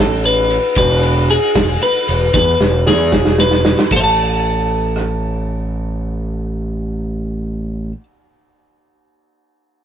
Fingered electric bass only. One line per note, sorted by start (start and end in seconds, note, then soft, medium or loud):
0.00 0.57 A1 loud
0.76 1.36 E1 loud
1.55 1.75 E1 loud
2.09 2.28 E1 medium
2.34 2.54 E2 loud
2.60 2.88 E1 loud
2.86 3.14 E2 loud
3.13 3.72 E1 loud
3.92 7.91 A1 loud